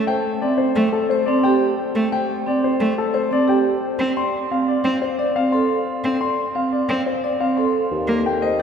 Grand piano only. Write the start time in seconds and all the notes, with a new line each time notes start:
0.07 G5
0.41 D5
0.58 C5
0.92 A4
1.10 C5
1.26 D5
1.44 G5
2.12 G5
2.47 D5
2.64 C5
2.98 A4
3.14 C5
3.32 D5
3.49 G5
4.17 C6
4.52 F5
4.68 D5
5.02 C5
5.19 D5
5.36 F5
5.52 C6
6.21 C6
6.56 F5
6.72 D5
7.06 C5
7.24 D5
7.41 F5
7.57 C6
8.26 G5
8.42 D#5
8.59 D5